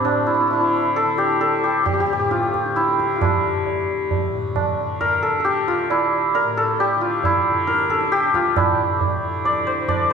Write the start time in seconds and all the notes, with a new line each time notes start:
Already playing: D2 A2 D3 C4 E4 G4
0.05 D4, tabla na
0.27 E4
0.34 E4
0.40 E4
0.47 D3 E4, tabla na
0.53 E4
0.61 E4
0.73 tabla na
0.96 A4, tabla tin
1.05 D3
1.18 G4, tabla na
1.41 A4, tabla tin
1.60 D2 G4
1.86 G4, tabla tin, tabla ge
1.93 G4
2.00 G4
2.06 G4
2.13 A2 G4
2.19 G4
2.31 F4, tabla te
2.43 tabla te
2.54 tabla ke
2.66 D3, tabla te
2.76 E4, tabla te
2.89 tabla te
3.00 tabla ke
3.11 tabla te
3.16 F4
3.21 D3 E4, tabla na, tabla ge
3.66 tabla tin, tabla ge
3.75 D2
4.11 tabla tin, tabla ge
4.30 A2
4.56 tabla na, tabla ge
4.83 D3
5.01 A#4, tabla tin, tabla ge
5.22 A4
5.38 D3 A4
5.45 G4, tabla te
5.57 tabla te
5.68 F4, tabla ke
5.79 tabla te
5.90 D2 E4, tabla na
6.35 A#4, tabla tin
6.44 A2
6.57 A4
6.79 G4, tabla tin
6.97 D3
7.01 F4
7.24 E4, tabla tin, tabla ge
7.51 D3
7.67 A#4, tabla te
7.79 tabla te
7.90 A4, tabla ke
8.01 D2, tabla te
8.12 G4, tabla te
8.23 tabla te
8.34 F4, tabla ke
8.45 tabla te
8.56 A2 E4, tabla na, tabla ge
9.01 tabla tin, tabla ge
9.11 D3
9.45 D5, tabla tin, tabla ge
9.64 D3 C5
9.88 D5, tabla na, tabla ge